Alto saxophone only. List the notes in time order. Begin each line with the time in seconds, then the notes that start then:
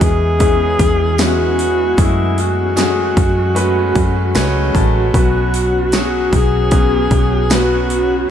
0.04 G#4
1.22 F#4
2.02 E4
2.41 F#4
5.18 F#4
5.95 F#4
6.35 G#4
7.53 F#4